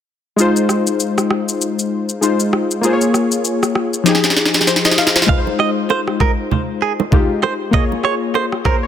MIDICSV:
0, 0, Header, 1, 4, 480
1, 0, Start_track
1, 0, Key_signature, -4, "major"
1, 0, Tempo, 612245
1, 303, Time_signature, 4, 2, 24, 8
1, 6956, End_track
2, 0, Start_track
2, 0, Title_t, "Clean electric guitar"
2, 0, Program_c, 0, 27
2, 4148, Note_on_c, 0, 77, 89
2, 4224, Note_off_c, 0, 77, 0
2, 4389, Note_on_c, 0, 75, 80
2, 4465, Note_off_c, 0, 75, 0
2, 4629, Note_on_c, 0, 72, 81
2, 4705, Note_off_c, 0, 72, 0
2, 4869, Note_on_c, 0, 70, 83
2, 4945, Note_off_c, 0, 70, 0
2, 5348, Note_on_c, 0, 68, 76
2, 5424, Note_off_c, 0, 68, 0
2, 5828, Note_on_c, 0, 72, 82
2, 5904, Note_off_c, 0, 72, 0
2, 6068, Note_on_c, 0, 75, 88
2, 6144, Note_off_c, 0, 75, 0
2, 6308, Note_on_c, 0, 73, 80
2, 6385, Note_off_c, 0, 73, 0
2, 6548, Note_on_c, 0, 72, 76
2, 6624, Note_off_c, 0, 72, 0
2, 6789, Note_on_c, 0, 70, 81
2, 6865, Note_off_c, 0, 70, 0
2, 6956, End_track
3, 0, Start_track
3, 0, Title_t, "Synth keys"
3, 0, Program_c, 1, 88
3, 285, Note_on_c, 1, 56, 75
3, 298, Note_on_c, 1, 63, 65
3, 312, Note_on_c, 1, 65, 65
3, 324, Note_on_c, 1, 72, 79
3, 462, Control_c, 1, 64, 127
3, 1705, Note_off_c, 1, 56, 0
3, 1712, Note_off_c, 1, 63, 0
3, 1719, Note_off_c, 1, 65, 0
3, 1725, Note_off_c, 1, 72, 0
3, 1734, Note_on_c, 1, 56, 57
3, 1740, Note_on_c, 1, 63, 51
3, 1747, Note_on_c, 1, 65, 52
3, 1753, Note_on_c, 1, 72, 64
3, 2205, Note_on_c, 1, 58, 72
3, 2210, Note_off_c, 1, 65, 0
3, 2219, Note_off_c, 1, 56, 0
3, 2219, Note_on_c, 1, 65, 66
3, 2222, Note_off_c, 1, 63, 0
3, 2228, Note_off_c, 1, 72, 0
3, 2232, Control_c, 1, 64, 0
3, 2232, Note_on_c, 1, 68, 69
3, 2245, Note_on_c, 1, 72, 66
3, 2293, Note_off_c, 1, 72, 0
3, 2296, Note_on_c, 1, 73, 81
3, 2363, Control_c, 1, 64, 127
3, 3155, Note_off_c, 1, 58, 0
3, 3162, Note_off_c, 1, 65, 0
3, 3164, Note_on_c, 1, 53, 71
3, 3168, Note_off_c, 1, 68, 0
3, 3179, Note_on_c, 1, 63, 66
3, 3190, Note_on_c, 1, 67, 65
3, 3194, Control_c, 1, 64, 0
3, 3201, Note_off_c, 1, 73, 0
3, 3204, Note_on_c, 1, 68, 80
3, 3311, Control_c, 1, 64, 127
3, 3662, Note_on_c, 1, 72, 64
3, 3795, Note_off_c, 1, 72, 0
3, 3804, Note_on_c, 1, 75, 66
3, 3899, Note_off_c, 1, 75, 0
3, 3904, Note_on_c, 1, 77, 72
3, 4036, Note_off_c, 1, 77, 0
3, 4044, Note_on_c, 1, 72, 65
3, 4114, Note_off_c, 1, 53, 0
3, 4121, Note_off_c, 1, 63, 0
3, 4127, Note_off_c, 1, 67, 0
3, 4128, Note_on_c, 1, 56, 73
3, 4134, Note_off_c, 1, 68, 0
3, 4140, Note_on_c, 1, 63, 67
3, 4153, Control_c, 1, 64, 0
3, 4153, Note_on_c, 1, 65, 66
3, 4166, Note_on_c, 1, 71, 65
3, 4207, Note_off_c, 1, 72, 0
3, 4214, Note_off_c, 1, 71, 0
3, 4217, Note_on_c, 1, 72, 81
3, 4303, Control_c, 1, 64, 127
3, 5546, Note_off_c, 1, 56, 0
3, 5553, Note_off_c, 1, 63, 0
3, 5559, Note_off_c, 1, 65, 0
3, 5574, Note_on_c, 1, 56, 56
3, 5581, Note_on_c, 1, 63, 53
3, 5588, Note_on_c, 1, 65, 52
3, 5592, Note_off_c, 1, 72, 0
3, 5594, Note_on_c, 1, 67, 64
3, 6044, Note_on_c, 1, 58, 72
3, 6048, Note_off_c, 1, 65, 0
3, 6057, Note_on_c, 1, 65, 66
3, 6059, Note_off_c, 1, 56, 0
3, 6062, Note_off_c, 1, 63, 0
3, 6068, Note_off_c, 1, 67, 0
3, 6070, Note_on_c, 1, 68, 68
3, 6074, Control_c, 1, 64, 0
3, 6083, Note_on_c, 1, 73, 80
3, 6191, Control_c, 1, 64, 127
3, 6784, Note_on_c, 1, 72, 70
3, 6913, Note_off_c, 1, 72, 0
3, 6914, Note_off_c, 1, 73, 0
3, 6923, Note_on_c, 1, 73, 70
3, 6956, Note_off_c, 1, 58, 0
3, 6956, Note_off_c, 1, 65, 0
3, 6956, Note_off_c, 1, 68, 0
3, 6956, Note_off_c, 1, 73, 0
3, 6956, End_track
4, 0, Start_track
4, 0, Title_t, "Drums"
4, 304, Note_on_c, 9, 82, 66
4, 382, Note_off_c, 9, 82, 0
4, 442, Note_on_c, 9, 82, 47
4, 520, Note_off_c, 9, 82, 0
4, 541, Note_on_c, 9, 37, 78
4, 544, Note_on_c, 9, 82, 49
4, 620, Note_off_c, 9, 37, 0
4, 623, Note_off_c, 9, 82, 0
4, 680, Note_on_c, 9, 82, 55
4, 759, Note_off_c, 9, 82, 0
4, 783, Note_on_c, 9, 82, 64
4, 862, Note_off_c, 9, 82, 0
4, 924, Note_on_c, 9, 37, 81
4, 926, Note_on_c, 9, 82, 43
4, 1003, Note_off_c, 9, 37, 0
4, 1004, Note_off_c, 9, 82, 0
4, 1023, Note_on_c, 9, 37, 94
4, 1102, Note_off_c, 9, 37, 0
4, 1165, Note_on_c, 9, 82, 56
4, 1244, Note_off_c, 9, 82, 0
4, 1266, Note_on_c, 9, 82, 69
4, 1344, Note_off_c, 9, 82, 0
4, 1404, Note_on_c, 9, 82, 48
4, 1482, Note_off_c, 9, 82, 0
4, 1639, Note_on_c, 9, 82, 49
4, 1718, Note_off_c, 9, 82, 0
4, 1747, Note_on_c, 9, 82, 78
4, 1825, Note_off_c, 9, 82, 0
4, 1880, Note_on_c, 9, 82, 55
4, 1958, Note_off_c, 9, 82, 0
4, 1984, Note_on_c, 9, 37, 84
4, 2062, Note_off_c, 9, 37, 0
4, 2124, Note_on_c, 9, 82, 45
4, 2203, Note_off_c, 9, 82, 0
4, 2223, Note_on_c, 9, 82, 66
4, 2302, Note_off_c, 9, 82, 0
4, 2362, Note_on_c, 9, 82, 45
4, 2441, Note_off_c, 9, 82, 0
4, 2463, Note_on_c, 9, 37, 76
4, 2466, Note_on_c, 9, 82, 51
4, 2541, Note_off_c, 9, 37, 0
4, 2544, Note_off_c, 9, 82, 0
4, 2600, Note_on_c, 9, 82, 57
4, 2679, Note_off_c, 9, 82, 0
4, 2703, Note_on_c, 9, 82, 66
4, 2781, Note_off_c, 9, 82, 0
4, 2845, Note_on_c, 9, 37, 77
4, 2846, Note_on_c, 9, 82, 46
4, 2923, Note_off_c, 9, 37, 0
4, 2925, Note_off_c, 9, 82, 0
4, 2943, Note_on_c, 9, 37, 91
4, 3022, Note_off_c, 9, 37, 0
4, 3086, Note_on_c, 9, 82, 57
4, 3164, Note_off_c, 9, 82, 0
4, 3182, Note_on_c, 9, 38, 51
4, 3185, Note_on_c, 9, 82, 73
4, 3252, Note_off_c, 9, 38, 0
4, 3252, Note_on_c, 9, 38, 48
4, 3264, Note_off_c, 9, 82, 0
4, 3322, Note_off_c, 9, 38, 0
4, 3322, Note_on_c, 9, 38, 57
4, 3324, Note_on_c, 9, 82, 49
4, 3373, Note_off_c, 9, 38, 0
4, 3373, Note_on_c, 9, 38, 52
4, 3402, Note_off_c, 9, 82, 0
4, 3423, Note_off_c, 9, 38, 0
4, 3423, Note_on_c, 9, 38, 63
4, 3493, Note_off_c, 9, 38, 0
4, 3493, Note_on_c, 9, 38, 56
4, 3560, Note_on_c, 9, 82, 50
4, 3563, Note_off_c, 9, 38, 0
4, 3563, Note_on_c, 9, 38, 73
4, 3613, Note_off_c, 9, 38, 0
4, 3613, Note_on_c, 9, 38, 64
4, 3638, Note_off_c, 9, 82, 0
4, 3663, Note_off_c, 9, 38, 0
4, 3663, Note_on_c, 9, 38, 76
4, 3667, Note_on_c, 9, 82, 77
4, 3733, Note_off_c, 9, 38, 0
4, 3733, Note_on_c, 9, 38, 64
4, 3746, Note_off_c, 9, 82, 0
4, 3801, Note_on_c, 9, 82, 52
4, 3803, Note_off_c, 9, 38, 0
4, 3803, Note_on_c, 9, 38, 85
4, 3853, Note_off_c, 9, 38, 0
4, 3853, Note_on_c, 9, 38, 72
4, 3879, Note_off_c, 9, 82, 0
4, 3904, Note_off_c, 9, 38, 0
4, 3904, Note_on_c, 9, 38, 94
4, 3973, Note_off_c, 9, 38, 0
4, 3973, Note_on_c, 9, 38, 79
4, 4043, Note_off_c, 9, 38, 0
4, 4043, Note_on_c, 9, 38, 93
4, 4045, Note_on_c, 9, 82, 47
4, 4093, Note_off_c, 9, 38, 0
4, 4093, Note_on_c, 9, 38, 84
4, 4124, Note_off_c, 9, 82, 0
4, 4143, Note_on_c, 9, 36, 115
4, 4148, Note_on_c, 9, 64, 71
4, 4171, Note_off_c, 9, 38, 0
4, 4222, Note_off_c, 9, 36, 0
4, 4227, Note_off_c, 9, 64, 0
4, 4289, Note_on_c, 9, 61, 54
4, 4367, Note_off_c, 9, 61, 0
4, 4383, Note_on_c, 9, 37, 79
4, 4461, Note_off_c, 9, 37, 0
4, 4625, Note_on_c, 9, 60, 69
4, 4703, Note_off_c, 9, 60, 0
4, 4763, Note_on_c, 9, 37, 80
4, 4841, Note_off_c, 9, 37, 0
4, 4863, Note_on_c, 9, 36, 87
4, 4864, Note_on_c, 9, 37, 92
4, 4870, Note_on_c, 9, 61, 72
4, 4941, Note_off_c, 9, 36, 0
4, 4942, Note_off_c, 9, 37, 0
4, 4948, Note_off_c, 9, 61, 0
4, 5107, Note_on_c, 9, 64, 71
4, 5186, Note_off_c, 9, 64, 0
4, 5486, Note_on_c, 9, 61, 88
4, 5564, Note_off_c, 9, 61, 0
4, 5582, Note_on_c, 9, 36, 93
4, 5587, Note_on_c, 9, 60, 78
4, 5587, Note_on_c, 9, 64, 80
4, 5661, Note_off_c, 9, 36, 0
4, 5666, Note_off_c, 9, 60, 0
4, 5666, Note_off_c, 9, 64, 0
4, 5824, Note_on_c, 9, 37, 87
4, 5830, Note_on_c, 9, 60, 46
4, 5830, Note_on_c, 9, 61, 61
4, 5902, Note_off_c, 9, 37, 0
4, 5908, Note_off_c, 9, 60, 0
4, 5908, Note_off_c, 9, 61, 0
4, 6063, Note_on_c, 9, 36, 122
4, 6069, Note_on_c, 9, 64, 74
4, 6141, Note_off_c, 9, 36, 0
4, 6147, Note_off_c, 9, 64, 0
4, 6209, Note_on_c, 9, 61, 54
4, 6288, Note_off_c, 9, 61, 0
4, 6301, Note_on_c, 9, 37, 75
4, 6380, Note_off_c, 9, 37, 0
4, 6546, Note_on_c, 9, 60, 73
4, 6624, Note_off_c, 9, 60, 0
4, 6683, Note_on_c, 9, 37, 80
4, 6762, Note_off_c, 9, 37, 0
4, 6783, Note_on_c, 9, 36, 85
4, 6783, Note_on_c, 9, 37, 96
4, 6788, Note_on_c, 9, 61, 72
4, 6861, Note_off_c, 9, 36, 0
4, 6862, Note_off_c, 9, 37, 0
4, 6867, Note_off_c, 9, 61, 0
4, 6956, End_track
0, 0, End_of_file